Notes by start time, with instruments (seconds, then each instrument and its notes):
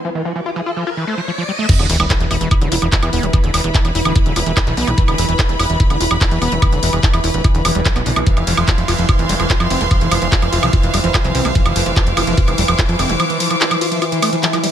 Already playing: riser
0.05 acid bass F3
0.15 acid bass E3
0.25 acid bass F3
0.36 acid bass F3
0.46 acid bass F4
0.56 acid bass F3
0.66 acid bass F4
0.77 acid bass F3
0.87 acid bass F4
0.97 acid bass E3
1.07 acid bass A3
1.18 acid bass F3
1.28 acid bass F3
1.38 acid bass F3
1.48 acid bass G3
1.59 acid bass A3
1.69 acid bass E3, synth texture E3, string section E4, kick, closed hi-hat, crash, sub drop
1.79 analog synth bass E1, acid bass D3, closed hi-hat, high woodblock
1.90 analog synth bass E1, acid bass E3, open hi-hat
1.97 analog synth bass E1, acid bass E3, string section B4, closed hi-hat, high woodblock
2.10 acid bass E4, kick, clap, closed hi-hat
2.18 analog synth bass E1, acid bass E3, string section B5, closed hi-hat
2.31 analog synth bass E1, acid bass E4, open hi-hat, high woodblock
2.41 analog synth bass E1, acid bass E3, closed hi-hat
2.51 acid bass E4, kick, closed hi-hat, high woodblock
2.61 analog synth bass E1, acid bass D3, closed hi-hat
2.72 analog synth bass E1, acid bass F4, open hi-hat
2.82 analog synth bass E1, acid bass E3, closed hi-hat, high woodblock
2.92 acid bass E4, kick, clap, closed hi-hat
3.03 analog synth bass E2, acid bass E3, closed hi-hat, high woodblock
3.13 analog synth bass E1, acid bass B3, open hi-hat
3.23 analog synth bass E1, acid bass E3, closed hi-hat
3.33 acid bass E3, kick, closed hi-hat, high woodblock
3.44 analog synth bass E1, acid bass D3, closed hi-hat
3.54 analog synth bass E1, acid bass E3, open hi-hat, high woodblock
3.64 analog synth bass E1, acid bass E3, closed hi-hat
3.74 acid bass E4, kick, clap, closed hi-hat
3.85 analog synth bass E1, acid bass E3, closed hi-hat, high woodblock
3.95 analog synth bass E1, acid bass E4, open hi-hat
4.05 analog synth bass D1, acid bass E3, closed hi-hat, high woodblock
4.16 acid bass E4, kick, closed hi-hat
4.26 analog synth bass E1, acid bass D3, closed hi-hat
4.36 analog synth bass E1, acid bass F4, open hi-hat, high woodblock
4.46 analog synth bass E1, acid bass E3, closed hi-hat
4.57 acid bass E4, kick, clap, closed hi-hat, high woodblock
4.67 analog synth bass B1, acid bass E3, clap, closed hi-hat
4.77 analog synth bass B1, acid bass B3, open hi-hat
4.87 analog synth bass B1, acid bass E3, closed hi-hat, high woodblock
4.98 acid bass E3, kick, closed hi-hat
5.08 analog synth bass E1, acid bass D3, closed hi-hat, high woodblock
5.18 analog synth bass E1, acid bass E3, open hi-hat
5.29 analog synth bass E1, acid bass E3, closed hi-hat
5.39 acid bass E4, kick, clap, closed hi-hat, high woodblock
5.49 analog synth bass E1, acid bass E3, closed hi-hat
5.59 analog synth bass E1, acid bass E4, open hi-hat, high woodblock
5.70 analog synth bass E1, acid bass E3, closed hi-hat
5.80 acid bass E4, kick, closed hi-hat
5.90 analog synth bass E1, acid bass D3, closed hi-hat, high woodblock
6.01 analog synth bass E1, acid bass F4, open hi-hat
6.11 analog synth bass E1, acid bass E3, closed hi-hat, high woodblock
6.21 acid bass E4, kick, clap, closed hi-hat
6.31 analog synth bass E2, acid bass E3, closed hi-hat
6.42 analog synth bass E1, acid bass B3, open hi-hat, high woodblock
6.52 analog synth bass E1, acid bass E3, closed hi-hat
6.62 acid bass E3, kick, closed hi-hat, high woodblock
6.72 analog synth bass E1, acid bass D3, closed hi-hat
6.83 analog synth bass E1, acid bass E3, open hi-hat
6.93 analog synth bass E1, acid bass E3, closed hi-hat, high woodblock
7.03 acid bass E4, kick, clap, closed hi-hat
7.14 analog synth bass E1, acid bass E3, closed hi-hat, high woodblock
7.24 analog synth bass E1, acid bass E4, open hi-hat
7.34 analog synth bass D1, acid bass E3, closed hi-hat
7.44 acid bass E4, kick, closed hi-hat, high woodblock
7.55 analog synth bass E1, acid bass D3, closed hi-hat
7.65 analog synth bass E1, acid bass F3, open hi-hat, high woodblock
7.75 analog synth bass E1, acid bass G3, closed hi-hat
7.85 acid bass E3, kick, clap, closed hi-hat
7.96 analog synth bass B1, acid bass B3, clap, closed hi-hat, high woodblock
8.06 analog synth bass B1, acid bass D3, open hi-hat
8.16 analog synth bass B1, acid bass E3, closed hi-hat, high woodblock
8.27 acid bass F3, string section F5, kick, closed hi-hat
8.37 analog synth bass F1, acid bass E3, closed hi-hat, high woodblock
8.47 analog synth bass F1, acid bass F3, string section C5, open hi-hat, ride
8.53 string section C6
8.57 analog synth bass F1, acid bass F3, closed hi-hat, high woodblock
8.68 acid bass F4, kick, clap, closed hi-hat
8.78 analog synth bass F1, acid bass F3, closed hi-hat
8.88 analog synth bass F1, acid bass F4, open hi-hat, ride, high woodblock
8.98 analog synth bass F1, acid bass F3, closed hi-hat
9.09 acid bass F4, kick, closed hi-hat, high woodblock
9.19 analog synth bass F1, acid bass E3, closed hi-hat
9.29 analog synth bass F1, acid bass G3, open hi-hat, ride
9.40 analog synth bass F1, acid bass F3, closed hi-hat, high woodblock
9.50 acid bass F4, kick, clap, closed hi-hat
9.60 analog synth bass F2, acid bass F3, closed hi-hat, high woodblock
9.70 analog synth bass F1, acid bass C4, open hi-hat, ride
9.81 analog synth bass F1, acid bass F3, closed hi-hat
9.91 acid bass F3, kick, closed hi-hat, high woodblock
10.01 analog synth bass F1, acid bass E3, closed hi-hat
10.11 analog synth bass F1, acid bass F3, open hi-hat, ride, high woodblock
10.22 analog synth bass F1, acid bass F3, closed hi-hat
10.32 acid bass F4, kick, clap, closed hi-hat
10.42 analog synth bass F1, acid bass F3, closed hi-hat, high woodblock
10.53 analog synth bass F1, acid bass F4, open hi-hat, ride
10.63 analog synth bass C2, acid bass F3, closed hi-hat, high woodblock
10.73 acid bass F4, kick, closed hi-hat
10.83 analog synth bass F1, acid bass E3, closed hi-hat
10.94 analog synth bass F1, acid bass G3, open hi-hat, ride, high woodblock
11.04 analog synth bass F1, acid bass F3, closed hi-hat
11.14 acid bass F4, kick, clap, closed hi-hat, high woodblock
11.24 analog synth bass C2, acid bass F3, clap, closed hi-hat
11.35 analog synth bass C2, acid bass C4, open hi-hat, ride
11.45 analog synth bass C2, acid bass F3, closed hi-hat, high woodblock
11.55 acid bass F3, kick, closed hi-hat
11.66 analog synth bass F1, acid bass E3, closed hi-hat, high woodblock
11.75 analog synth bass F1, acid bass F3, string section D6, open hi-hat, ride
11.86 analog synth bass F1, acid bass F3, closed hi-hat
11.96 acid bass F4, kick, clap, closed hi-hat, high woodblock
12.07 analog synth bass F1, acid bass F3, closed hi-hat
12.17 analog synth bass F1, acid bass F4, open hi-hat, ride, high woodblock
12.27 analog synth bass F1, acid bass F3, closed hi-hat
12.37 acid bass F4, kick, closed hi-hat
12.48 analog synth bass F1, acid bass E3, closed hi-hat, high woodblock
12.58 analog synth bass F1, acid bass G3, open hi-hat, ride
12.68 analog synth bass F1, acid bass F3, closed hi-hat, high woodblock
12.79 acid bass F4, kick, clap, closed hi-hat
12.89 analog synth bass F2, acid bass F3, closed hi-hat
12.99 analog synth bass F1, acid bass C4, open hi-hat, ride, high woodblock
13.09 analog synth bass F1, acid bass F3, closed hi-hat
13.20 acid bass F3, closed hi-hat, high woodblock
13.30 acid bass E3, closed hi-hat
13.40 acid bass F3, open hi-hat, ride
13.51 acid bass F3, closed hi-hat, high woodblock
13.61 acid bass F4, clap, closed hi-hat
13.71 acid bass F3, closed hi-hat, high woodblock
13.81 acid bass F4, open hi-hat, ride
13.92 acid bass F3, closed hi-hat
14.02 acid bass F4, closed hi-hat, swell, high woodblock
14.12 acid bass E3, closed hi-hat
14.22 acid bass A3, open hi-hat, ride, high woodblock
14.33 acid bass F3, closed hi-hat
14.43 acid bass F3, clap, closed hi-hat
14.53 acid bass F3, clap, closed hi-hat, high woodblock
14.64 acid bass G3, open hi-hat, ride